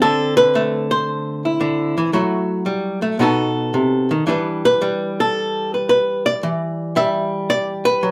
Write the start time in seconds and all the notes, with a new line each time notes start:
Already playing: A3 C4 F#4
0.02 D3 A4
0.37 B4
0.55 A3
0.91 C5
1.45 E4
1.61 D3
1.98 E3
2.13 F#3 A3 E4 F#4
2.66 G3
3.02 A3
3.19 B2 B3 D#4 F#4 A4
3.74 C3
4.11 D#3
4.27 E3 G3 D4 G4 B4
4.65 B4
4.82 G3
5.20 A4
5.74 B4
5.89 B4
6.26 D5
6.43 E3
6.96 G3 E5
7.50 D5
7.85 B4
8.03 F#3